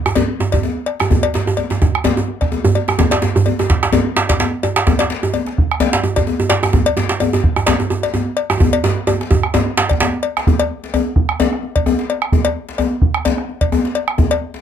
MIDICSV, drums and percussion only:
0, 0, Header, 1, 4, 480
1, 0, Start_track
1, 0, Tempo, 470219
1, 1130, Time_signature, 4, 2, 24, 8
1, 6886, Tempo, 464396
1, 15016, End_track
2, 0, Start_track
2, 0, Title_t, "Bombo"
2, 60, Note_on_c, 9, 37, 79
2, 162, Note_off_c, 9, 37, 0
2, 546, Note_on_c, 9, 43, 80
2, 648, Note_off_c, 9, 43, 0
2, 893, Note_on_c, 9, 37, 33
2, 995, Note_off_c, 9, 37, 0
2, 1024, Note_on_c, 9, 37, 76
2, 1126, Note_off_c, 9, 37, 0
2, 1135, Note_on_c, 9, 43, 104
2, 1237, Note_off_c, 9, 43, 0
2, 1273, Note_on_c, 9, 37, 32
2, 1375, Note_off_c, 9, 37, 0
2, 1754, Note_on_c, 9, 37, 30
2, 1856, Note_off_c, 9, 37, 0
2, 1858, Note_on_c, 9, 37, 32
2, 1858, Note_on_c, 9, 43, 97
2, 1960, Note_off_c, 9, 37, 0
2, 1960, Note_off_c, 9, 43, 0
2, 1991, Note_on_c, 9, 37, 74
2, 2094, Note_off_c, 9, 37, 0
2, 2100, Note_on_c, 9, 37, 36
2, 2202, Note_off_c, 9, 37, 0
2, 2467, Note_on_c, 9, 37, 32
2, 2467, Note_on_c, 9, 43, 81
2, 2569, Note_off_c, 9, 37, 0
2, 2569, Note_off_c, 9, 43, 0
2, 2947, Note_on_c, 9, 37, 76
2, 3049, Note_off_c, 9, 37, 0
2, 3058, Note_on_c, 9, 37, 36
2, 3058, Note_on_c, 9, 43, 100
2, 3160, Note_off_c, 9, 37, 0
2, 3160, Note_off_c, 9, 43, 0
2, 3424, Note_on_c, 9, 37, 34
2, 3526, Note_off_c, 9, 37, 0
2, 3668, Note_on_c, 9, 37, 31
2, 3770, Note_off_c, 9, 37, 0
2, 3777, Note_on_c, 9, 43, 90
2, 3879, Note_off_c, 9, 43, 0
2, 3908, Note_on_c, 9, 37, 74
2, 4010, Note_off_c, 9, 37, 0
2, 4386, Note_on_c, 9, 43, 81
2, 4488, Note_off_c, 9, 43, 0
2, 4739, Note_on_c, 9, 37, 31
2, 4841, Note_off_c, 9, 37, 0
2, 4861, Note_on_c, 9, 37, 76
2, 4963, Note_off_c, 9, 37, 0
2, 4974, Note_on_c, 9, 43, 102
2, 5076, Note_off_c, 9, 43, 0
2, 5347, Note_on_c, 9, 37, 28
2, 5449, Note_off_c, 9, 37, 0
2, 5588, Note_on_c, 9, 37, 32
2, 5690, Note_off_c, 9, 37, 0
2, 5699, Note_on_c, 9, 43, 92
2, 5801, Note_off_c, 9, 43, 0
2, 5834, Note_on_c, 9, 37, 70
2, 5936, Note_off_c, 9, 37, 0
2, 6301, Note_on_c, 9, 43, 75
2, 6403, Note_off_c, 9, 43, 0
2, 6654, Note_on_c, 9, 37, 31
2, 6756, Note_off_c, 9, 37, 0
2, 6772, Note_on_c, 9, 37, 70
2, 6874, Note_off_c, 9, 37, 0
2, 6878, Note_on_c, 9, 37, 32
2, 6878, Note_on_c, 9, 43, 98
2, 6981, Note_off_c, 9, 37, 0
2, 6981, Note_off_c, 9, 43, 0
2, 7259, Note_on_c, 9, 37, 29
2, 7362, Note_off_c, 9, 37, 0
2, 7495, Note_on_c, 9, 37, 29
2, 7598, Note_off_c, 9, 37, 0
2, 7601, Note_on_c, 9, 43, 92
2, 7705, Note_off_c, 9, 43, 0
2, 7732, Note_on_c, 9, 37, 72
2, 7835, Note_off_c, 9, 37, 0
2, 8698, Note_on_c, 9, 37, 77
2, 8801, Note_off_c, 9, 37, 0
2, 8809, Note_on_c, 9, 43, 118
2, 8912, Note_off_c, 9, 43, 0
2, 9434, Note_on_c, 9, 37, 31
2, 9537, Note_off_c, 9, 37, 0
2, 9540, Note_on_c, 9, 43, 97
2, 9643, Note_off_c, 9, 43, 0
2, 9665, Note_on_c, 9, 37, 74
2, 9768, Note_off_c, 9, 37, 0
2, 10153, Note_on_c, 9, 37, 33
2, 10153, Note_on_c, 9, 43, 79
2, 10257, Note_off_c, 9, 37, 0
2, 10257, Note_off_c, 9, 43, 0
2, 10630, Note_on_c, 9, 37, 75
2, 10734, Note_off_c, 9, 37, 0
2, 10736, Note_on_c, 9, 43, 113
2, 10839, Note_off_c, 9, 43, 0
2, 10870, Note_on_c, 9, 37, 33
2, 10973, Note_off_c, 9, 37, 0
2, 11218, Note_on_c, 9, 37, 37
2, 11322, Note_off_c, 9, 37, 0
2, 11448, Note_on_c, 9, 43, 100
2, 11552, Note_off_c, 9, 43, 0
2, 11582, Note_on_c, 9, 37, 77
2, 11686, Note_off_c, 9, 37, 0
2, 11827, Note_on_c, 9, 37, 32
2, 11931, Note_off_c, 9, 37, 0
2, 12068, Note_on_c, 9, 43, 80
2, 12171, Note_off_c, 9, 43, 0
2, 12173, Note_on_c, 9, 37, 33
2, 12276, Note_off_c, 9, 37, 0
2, 12543, Note_on_c, 9, 37, 82
2, 12646, Note_off_c, 9, 37, 0
2, 12652, Note_on_c, 9, 43, 108
2, 12755, Note_off_c, 9, 43, 0
2, 12786, Note_on_c, 9, 37, 33
2, 12890, Note_off_c, 9, 37, 0
2, 13130, Note_on_c, 9, 37, 33
2, 13234, Note_off_c, 9, 37, 0
2, 13368, Note_on_c, 9, 43, 93
2, 13471, Note_off_c, 9, 43, 0
2, 13500, Note_on_c, 9, 37, 76
2, 13603, Note_off_c, 9, 37, 0
2, 13744, Note_on_c, 9, 37, 34
2, 13847, Note_off_c, 9, 37, 0
2, 13983, Note_on_c, 9, 43, 81
2, 14086, Note_off_c, 9, 43, 0
2, 14098, Note_on_c, 9, 37, 35
2, 14201, Note_off_c, 9, 37, 0
2, 14464, Note_on_c, 9, 37, 81
2, 14567, Note_off_c, 9, 37, 0
2, 14577, Note_on_c, 9, 43, 110
2, 14681, Note_off_c, 9, 43, 0
2, 14709, Note_on_c, 9, 37, 33
2, 14812, Note_off_c, 9, 37, 0
2, 15016, End_track
3, 0, Start_track
3, 0, Title_t, "Djembe"
3, 60, Note_on_c, 9, 63, 90
3, 162, Note_off_c, 9, 63, 0
3, 164, Note_on_c, 9, 62, 81
3, 164, Note_on_c, 9, 63, 80
3, 164, Note_on_c, 9, 64, 78
3, 173, Note_off_c, 9, 63, 0
3, 173, Note_on_c, 9, 63, 81
3, 266, Note_off_c, 9, 62, 0
3, 266, Note_off_c, 9, 64, 0
3, 275, Note_off_c, 9, 63, 0
3, 406, Note_on_c, 9, 62, 24
3, 412, Note_on_c, 9, 63, 93
3, 508, Note_off_c, 9, 62, 0
3, 514, Note_off_c, 9, 63, 0
3, 537, Note_on_c, 9, 62, 59
3, 549, Note_on_c, 9, 63, 77
3, 639, Note_off_c, 9, 62, 0
3, 646, Note_off_c, 9, 63, 0
3, 646, Note_on_c, 9, 63, 80
3, 748, Note_off_c, 9, 63, 0
3, 886, Note_on_c, 9, 62, 25
3, 988, Note_off_c, 9, 62, 0
3, 1017, Note_on_c, 9, 62, 67
3, 1030, Note_on_c, 9, 63, 88
3, 1119, Note_off_c, 9, 62, 0
3, 1129, Note_off_c, 9, 63, 0
3, 1129, Note_on_c, 9, 62, 24
3, 1129, Note_on_c, 9, 63, 77
3, 1129, Note_on_c, 9, 64, 83
3, 1142, Note_off_c, 9, 63, 0
3, 1142, Note_on_c, 9, 63, 81
3, 1231, Note_off_c, 9, 62, 0
3, 1231, Note_off_c, 9, 64, 0
3, 1244, Note_off_c, 9, 63, 0
3, 1368, Note_on_c, 9, 62, 76
3, 1380, Note_on_c, 9, 63, 90
3, 1470, Note_off_c, 9, 62, 0
3, 1482, Note_off_c, 9, 63, 0
3, 1504, Note_on_c, 9, 63, 79
3, 1606, Note_off_c, 9, 63, 0
3, 1612, Note_on_c, 9, 62, 25
3, 1612, Note_on_c, 9, 63, 79
3, 1714, Note_off_c, 9, 62, 0
3, 1714, Note_off_c, 9, 63, 0
3, 1738, Note_on_c, 9, 62, 66
3, 1744, Note_on_c, 9, 63, 83
3, 1840, Note_off_c, 9, 62, 0
3, 1846, Note_off_c, 9, 63, 0
3, 1847, Note_on_c, 9, 62, 24
3, 1854, Note_on_c, 9, 63, 82
3, 1950, Note_off_c, 9, 62, 0
3, 1956, Note_off_c, 9, 63, 0
3, 2084, Note_on_c, 9, 63, 80
3, 2090, Note_off_c, 9, 63, 0
3, 2090, Note_on_c, 9, 62, 84
3, 2090, Note_on_c, 9, 63, 74
3, 2090, Note_on_c, 9, 64, 76
3, 2192, Note_off_c, 9, 62, 0
3, 2192, Note_off_c, 9, 63, 0
3, 2192, Note_off_c, 9, 64, 0
3, 2217, Note_on_c, 9, 63, 77
3, 2226, Note_on_c, 9, 62, 24
3, 2319, Note_off_c, 9, 63, 0
3, 2328, Note_off_c, 9, 62, 0
3, 2468, Note_on_c, 9, 62, 61
3, 2570, Note_off_c, 9, 62, 0
3, 2571, Note_on_c, 9, 62, 27
3, 2571, Note_on_c, 9, 63, 87
3, 2673, Note_off_c, 9, 62, 0
3, 2673, Note_off_c, 9, 63, 0
3, 2699, Note_on_c, 9, 64, 48
3, 2700, Note_off_c, 9, 64, 0
3, 2700, Note_on_c, 9, 64, 113
3, 2802, Note_off_c, 9, 64, 0
3, 2810, Note_on_c, 9, 62, 52
3, 2913, Note_off_c, 9, 62, 0
3, 2939, Note_on_c, 9, 62, 65
3, 2943, Note_on_c, 9, 63, 80
3, 3041, Note_off_c, 9, 62, 0
3, 3045, Note_off_c, 9, 63, 0
3, 3048, Note_on_c, 9, 62, 24
3, 3048, Note_on_c, 9, 63, 84
3, 3048, Note_on_c, 9, 64, 85
3, 3050, Note_off_c, 9, 62, 0
3, 3050, Note_on_c, 9, 62, 81
3, 3150, Note_off_c, 9, 63, 0
3, 3150, Note_off_c, 9, 64, 0
3, 3152, Note_off_c, 9, 62, 0
3, 3182, Note_on_c, 9, 62, 24
3, 3184, Note_off_c, 9, 62, 0
3, 3184, Note_on_c, 9, 62, 90
3, 3286, Note_off_c, 9, 62, 0
3, 3286, Note_on_c, 9, 62, 77
3, 3290, Note_on_c, 9, 63, 90
3, 3388, Note_off_c, 9, 62, 0
3, 3392, Note_off_c, 9, 63, 0
3, 3422, Note_on_c, 9, 62, 26
3, 3429, Note_on_c, 9, 64, 110
3, 3524, Note_off_c, 9, 62, 0
3, 3531, Note_off_c, 9, 64, 0
3, 3534, Note_on_c, 9, 63, 83
3, 3636, Note_off_c, 9, 63, 0
3, 3667, Note_on_c, 9, 62, 68
3, 3671, Note_on_c, 9, 63, 85
3, 3769, Note_off_c, 9, 62, 0
3, 3770, Note_on_c, 9, 62, 25
3, 3773, Note_off_c, 9, 63, 0
3, 3774, Note_off_c, 9, 62, 0
3, 3774, Note_on_c, 9, 62, 80
3, 3876, Note_off_c, 9, 62, 0
3, 3909, Note_on_c, 9, 62, 89
3, 4007, Note_off_c, 9, 62, 0
3, 4007, Note_on_c, 9, 62, 86
3, 4007, Note_on_c, 9, 63, 81
3, 4007, Note_on_c, 9, 64, 85
3, 4013, Note_off_c, 9, 63, 0
3, 4013, Note_on_c, 9, 63, 86
3, 4109, Note_off_c, 9, 62, 0
3, 4109, Note_off_c, 9, 64, 0
3, 4115, Note_off_c, 9, 63, 0
3, 4243, Note_on_c, 9, 62, 25
3, 4252, Note_off_c, 9, 62, 0
3, 4252, Note_on_c, 9, 62, 111
3, 4354, Note_off_c, 9, 62, 0
3, 4385, Note_on_c, 9, 62, 82
3, 4486, Note_on_c, 9, 63, 86
3, 4488, Note_off_c, 9, 62, 0
3, 4491, Note_on_c, 9, 62, 88
3, 4588, Note_off_c, 9, 63, 0
3, 4594, Note_off_c, 9, 62, 0
3, 4730, Note_on_c, 9, 62, 26
3, 4730, Note_on_c, 9, 63, 82
3, 4832, Note_off_c, 9, 62, 0
3, 4832, Note_off_c, 9, 63, 0
3, 4861, Note_on_c, 9, 62, 110
3, 4964, Note_off_c, 9, 62, 0
3, 4969, Note_on_c, 9, 62, 82
3, 4972, Note_off_c, 9, 62, 0
3, 4972, Note_on_c, 9, 62, 27
3, 4972, Note_on_c, 9, 63, 80
3, 4972, Note_on_c, 9, 64, 82
3, 5074, Note_off_c, 9, 62, 0
3, 5074, Note_off_c, 9, 63, 0
3, 5074, Note_off_c, 9, 64, 0
3, 5100, Note_on_c, 9, 62, 25
3, 5106, Note_off_c, 9, 62, 0
3, 5106, Note_on_c, 9, 62, 82
3, 5207, Note_off_c, 9, 62, 0
3, 5207, Note_on_c, 9, 62, 79
3, 5309, Note_off_c, 9, 62, 0
3, 5340, Note_on_c, 9, 62, 27
3, 5340, Note_on_c, 9, 63, 83
3, 5442, Note_off_c, 9, 62, 0
3, 5442, Note_off_c, 9, 63, 0
3, 5445, Note_on_c, 9, 63, 78
3, 5547, Note_off_c, 9, 63, 0
3, 5579, Note_on_c, 9, 62, 67
3, 5681, Note_off_c, 9, 62, 0
3, 5692, Note_on_c, 9, 62, 25
3, 5794, Note_off_c, 9, 62, 0
3, 5923, Note_on_c, 9, 62, 83
3, 5923, Note_on_c, 9, 63, 81
3, 5923, Note_on_c, 9, 64, 87
3, 6025, Note_off_c, 9, 62, 0
3, 6025, Note_off_c, 9, 63, 0
3, 6025, Note_off_c, 9, 64, 0
3, 6054, Note_on_c, 9, 62, 106
3, 6157, Note_off_c, 9, 62, 0
3, 6161, Note_on_c, 9, 62, 25
3, 6161, Note_on_c, 9, 63, 84
3, 6263, Note_off_c, 9, 62, 0
3, 6263, Note_off_c, 9, 63, 0
3, 6292, Note_on_c, 9, 62, 62
3, 6292, Note_on_c, 9, 63, 73
3, 6394, Note_off_c, 9, 63, 0
3, 6395, Note_off_c, 9, 62, 0
3, 6400, Note_on_c, 9, 63, 82
3, 6502, Note_off_c, 9, 63, 0
3, 6529, Note_on_c, 9, 63, 88
3, 6632, Note_off_c, 9, 63, 0
3, 6634, Note_on_c, 9, 62, 107
3, 6645, Note_off_c, 9, 62, 0
3, 6645, Note_on_c, 9, 62, 25
3, 6747, Note_off_c, 9, 62, 0
3, 6766, Note_on_c, 9, 63, 86
3, 6776, Note_on_c, 9, 62, 68
3, 6868, Note_off_c, 9, 63, 0
3, 6870, Note_on_c, 9, 63, 82
3, 6878, Note_off_c, 9, 62, 0
3, 6878, Note_off_c, 9, 63, 0
3, 6878, Note_on_c, 9, 62, 26
3, 6878, Note_on_c, 9, 63, 81
3, 6878, Note_on_c, 9, 64, 83
3, 6982, Note_off_c, 9, 62, 0
3, 6982, Note_off_c, 9, 63, 0
3, 6982, Note_off_c, 9, 64, 0
3, 7018, Note_on_c, 9, 62, 25
3, 7115, Note_on_c, 9, 63, 91
3, 7121, Note_off_c, 9, 62, 0
3, 7121, Note_on_c, 9, 62, 85
3, 7218, Note_off_c, 9, 63, 0
3, 7224, Note_off_c, 9, 62, 0
3, 7245, Note_on_c, 9, 62, 98
3, 7259, Note_off_c, 9, 62, 0
3, 7259, Note_on_c, 9, 62, 26
3, 7357, Note_on_c, 9, 63, 78
3, 7362, Note_off_c, 9, 62, 0
3, 7370, Note_off_c, 9, 63, 0
3, 7370, Note_on_c, 9, 63, 82
3, 7473, Note_off_c, 9, 63, 0
3, 7493, Note_on_c, 9, 63, 84
3, 7502, Note_on_c, 9, 62, 69
3, 7597, Note_off_c, 9, 63, 0
3, 7606, Note_off_c, 9, 62, 0
3, 7610, Note_on_c, 9, 62, 24
3, 7714, Note_off_c, 9, 62, 0
3, 7731, Note_on_c, 9, 63, 82
3, 7834, Note_off_c, 9, 63, 0
3, 7838, Note_on_c, 9, 62, 107
3, 7850, Note_off_c, 9, 62, 0
3, 7850, Note_on_c, 9, 62, 84
3, 7850, Note_on_c, 9, 63, 82
3, 7850, Note_on_c, 9, 64, 76
3, 7953, Note_off_c, 9, 62, 0
3, 7953, Note_off_c, 9, 63, 0
3, 7953, Note_off_c, 9, 64, 0
3, 7973, Note_on_c, 9, 63, 77
3, 8077, Note_off_c, 9, 63, 0
3, 8082, Note_on_c, 9, 63, 80
3, 8094, Note_on_c, 9, 62, 25
3, 8186, Note_off_c, 9, 63, 0
3, 8198, Note_off_c, 9, 62, 0
3, 8222, Note_on_c, 9, 62, 66
3, 8324, Note_on_c, 9, 63, 78
3, 8325, Note_off_c, 9, 62, 0
3, 8330, Note_off_c, 9, 63, 0
3, 8330, Note_on_c, 9, 63, 82
3, 8433, Note_off_c, 9, 63, 0
3, 8574, Note_on_c, 9, 62, 25
3, 8677, Note_off_c, 9, 62, 0
3, 8699, Note_on_c, 9, 63, 102
3, 8711, Note_on_c, 9, 62, 66
3, 8802, Note_off_c, 9, 63, 0
3, 8805, Note_on_c, 9, 63, 102
3, 8814, Note_off_c, 9, 62, 0
3, 8819, Note_off_c, 9, 63, 0
3, 8819, Note_on_c, 9, 63, 78
3, 8819, Note_on_c, 9, 64, 84
3, 8923, Note_off_c, 9, 63, 0
3, 8923, Note_off_c, 9, 64, 0
3, 8948, Note_on_c, 9, 62, 23
3, 9048, Note_on_c, 9, 63, 112
3, 9050, Note_off_c, 9, 62, 0
3, 9050, Note_on_c, 9, 62, 83
3, 9152, Note_off_c, 9, 63, 0
3, 9154, Note_off_c, 9, 62, 0
3, 9189, Note_on_c, 9, 62, 25
3, 9290, Note_on_c, 9, 63, 99
3, 9293, Note_off_c, 9, 62, 0
3, 9300, Note_off_c, 9, 63, 0
3, 9300, Note_on_c, 9, 62, 24
3, 9300, Note_on_c, 9, 63, 75
3, 9403, Note_off_c, 9, 62, 0
3, 9403, Note_off_c, 9, 63, 0
3, 9433, Note_on_c, 9, 62, 71
3, 9533, Note_on_c, 9, 63, 105
3, 9536, Note_off_c, 9, 62, 0
3, 9636, Note_off_c, 9, 63, 0
3, 9773, Note_on_c, 9, 63, 108
3, 9778, Note_off_c, 9, 63, 0
3, 9778, Note_on_c, 9, 62, 83
3, 9778, Note_on_c, 9, 63, 85
3, 9778, Note_on_c, 9, 64, 76
3, 9881, Note_off_c, 9, 62, 0
3, 9881, Note_off_c, 9, 63, 0
3, 9881, Note_off_c, 9, 64, 0
3, 10016, Note_on_c, 9, 62, 113
3, 10019, Note_off_c, 9, 62, 0
3, 10019, Note_on_c, 9, 62, 28
3, 10122, Note_off_c, 9, 62, 0
3, 10156, Note_on_c, 9, 62, 59
3, 10254, Note_off_c, 9, 62, 0
3, 10254, Note_on_c, 9, 62, 104
3, 10262, Note_on_c, 9, 63, 84
3, 10357, Note_off_c, 9, 62, 0
3, 10366, Note_off_c, 9, 63, 0
3, 10393, Note_on_c, 9, 62, 30
3, 10497, Note_off_c, 9, 62, 0
3, 10634, Note_on_c, 9, 62, 72
3, 10738, Note_off_c, 9, 62, 0
3, 10742, Note_on_c, 9, 62, 25
3, 10742, Note_on_c, 9, 63, 86
3, 10742, Note_on_c, 9, 64, 84
3, 10845, Note_off_c, 9, 62, 0
3, 10845, Note_off_c, 9, 63, 0
3, 10845, Note_off_c, 9, 64, 0
3, 11114, Note_on_c, 9, 62, 61
3, 11218, Note_off_c, 9, 62, 0
3, 11221, Note_on_c, 9, 63, 73
3, 11221, Note_on_c, 9, 64, 75
3, 11324, Note_off_c, 9, 63, 0
3, 11324, Note_off_c, 9, 64, 0
3, 11696, Note_on_c, 9, 62, 78
3, 11696, Note_on_c, 9, 63, 82
3, 11696, Note_on_c, 9, 64, 80
3, 11800, Note_off_c, 9, 62, 0
3, 11800, Note_off_c, 9, 63, 0
3, 11800, Note_off_c, 9, 64, 0
3, 11827, Note_on_c, 9, 62, 25
3, 11931, Note_off_c, 9, 62, 0
3, 11932, Note_on_c, 9, 62, 26
3, 12035, Note_off_c, 9, 62, 0
3, 12175, Note_on_c, 9, 63, 85
3, 12175, Note_on_c, 9, 64, 84
3, 12279, Note_off_c, 9, 63, 0
3, 12279, Note_off_c, 9, 64, 0
3, 12306, Note_on_c, 9, 62, 61
3, 12409, Note_off_c, 9, 62, 0
3, 12657, Note_on_c, 9, 62, 24
3, 12657, Note_on_c, 9, 63, 85
3, 12657, Note_on_c, 9, 64, 76
3, 12761, Note_off_c, 9, 62, 0
3, 12761, Note_off_c, 9, 63, 0
3, 12761, Note_off_c, 9, 64, 0
3, 13026, Note_on_c, 9, 62, 61
3, 13129, Note_off_c, 9, 62, 0
3, 13134, Note_on_c, 9, 63, 76
3, 13134, Note_on_c, 9, 64, 79
3, 13237, Note_off_c, 9, 63, 0
3, 13237, Note_off_c, 9, 64, 0
3, 13615, Note_on_c, 9, 62, 77
3, 13615, Note_on_c, 9, 63, 76
3, 13615, Note_on_c, 9, 64, 82
3, 13719, Note_off_c, 9, 62, 0
3, 13719, Note_off_c, 9, 63, 0
3, 13719, Note_off_c, 9, 64, 0
3, 13752, Note_on_c, 9, 62, 24
3, 13855, Note_off_c, 9, 62, 0
3, 13859, Note_on_c, 9, 62, 24
3, 13963, Note_off_c, 9, 62, 0
3, 14097, Note_on_c, 9, 63, 81
3, 14097, Note_on_c, 9, 64, 84
3, 14201, Note_off_c, 9, 63, 0
3, 14201, Note_off_c, 9, 64, 0
3, 14229, Note_on_c, 9, 62, 67
3, 14332, Note_off_c, 9, 62, 0
3, 14572, Note_on_c, 9, 62, 25
3, 14572, Note_on_c, 9, 63, 82
3, 14572, Note_on_c, 9, 64, 80
3, 14675, Note_off_c, 9, 62, 0
3, 14675, Note_off_c, 9, 63, 0
3, 14675, Note_off_c, 9, 64, 0
3, 14943, Note_on_c, 9, 62, 59
3, 15016, Note_off_c, 9, 62, 0
3, 15016, End_track
4, 0, Start_track
4, 0, Title_t, "Drums"
4, 158, Note_on_c, 9, 56, 58
4, 260, Note_off_c, 9, 56, 0
4, 534, Note_on_c, 9, 56, 57
4, 636, Note_off_c, 9, 56, 0
4, 881, Note_on_c, 9, 56, 55
4, 983, Note_off_c, 9, 56, 0
4, 1256, Note_on_c, 9, 56, 74
4, 1358, Note_off_c, 9, 56, 0
4, 1603, Note_on_c, 9, 56, 54
4, 1705, Note_off_c, 9, 56, 0
4, 2088, Note_on_c, 9, 56, 51
4, 2190, Note_off_c, 9, 56, 0
4, 2460, Note_on_c, 9, 56, 46
4, 2562, Note_off_c, 9, 56, 0
4, 2810, Note_on_c, 9, 56, 51
4, 2912, Note_off_c, 9, 56, 0
4, 3177, Note_on_c, 9, 56, 61
4, 3279, Note_off_c, 9, 56, 0
4, 3529, Note_on_c, 9, 56, 41
4, 3631, Note_off_c, 9, 56, 0
4, 4014, Note_on_c, 9, 56, 50
4, 4116, Note_off_c, 9, 56, 0
4, 4381, Note_on_c, 9, 56, 52
4, 4483, Note_off_c, 9, 56, 0
4, 4728, Note_on_c, 9, 56, 52
4, 4830, Note_off_c, 9, 56, 0
4, 5094, Note_on_c, 9, 56, 71
4, 5196, Note_off_c, 9, 56, 0
4, 5448, Note_on_c, 9, 56, 53
4, 5550, Note_off_c, 9, 56, 0
4, 5926, Note_on_c, 9, 56, 59
4, 6028, Note_off_c, 9, 56, 0
4, 6291, Note_on_c, 9, 56, 62
4, 6393, Note_off_c, 9, 56, 0
4, 6630, Note_on_c, 9, 56, 67
4, 6732, Note_off_c, 9, 56, 0
4, 7005, Note_on_c, 9, 56, 80
4, 7109, Note_off_c, 9, 56, 0
4, 7358, Note_on_c, 9, 56, 58
4, 7461, Note_off_c, 9, 56, 0
4, 7835, Note_on_c, 9, 56, 63
4, 7939, Note_off_c, 9, 56, 0
4, 8216, Note_on_c, 9, 56, 61
4, 8319, Note_off_c, 9, 56, 0
4, 8561, Note_on_c, 9, 56, 66
4, 8664, Note_off_c, 9, 56, 0
4, 8936, Note_on_c, 9, 56, 76
4, 9040, Note_off_c, 9, 56, 0
4, 9291, Note_on_c, 9, 56, 54
4, 9394, Note_off_c, 9, 56, 0
4, 9774, Note_on_c, 9, 56, 52
4, 9877, Note_off_c, 9, 56, 0
4, 10140, Note_on_c, 9, 56, 57
4, 10243, Note_off_c, 9, 56, 0
4, 10485, Note_on_c, 9, 56, 56
4, 10588, Note_off_c, 9, 56, 0
4, 10864, Note_on_c, 9, 56, 72
4, 10968, Note_off_c, 9, 56, 0
4, 11218, Note_on_c, 9, 56, 53
4, 11322, Note_off_c, 9, 56, 0
4, 11693, Note_on_c, 9, 56, 53
4, 11796, Note_off_c, 9, 56, 0
4, 12064, Note_on_c, 9, 56, 58
4, 12168, Note_off_c, 9, 56, 0
4, 12417, Note_on_c, 9, 56, 57
4, 12520, Note_off_c, 9, 56, 0
4, 12778, Note_on_c, 9, 56, 70
4, 12881, Note_off_c, 9, 56, 0
4, 13125, Note_on_c, 9, 56, 52
4, 13228, Note_off_c, 9, 56, 0
4, 13610, Note_on_c, 9, 56, 55
4, 13713, Note_off_c, 9, 56, 0
4, 13982, Note_on_c, 9, 56, 58
4, 14085, Note_off_c, 9, 56, 0
4, 14334, Note_on_c, 9, 56, 61
4, 14437, Note_off_c, 9, 56, 0
4, 14704, Note_on_c, 9, 56, 76
4, 14808, Note_off_c, 9, 56, 0
4, 15016, End_track
0, 0, End_of_file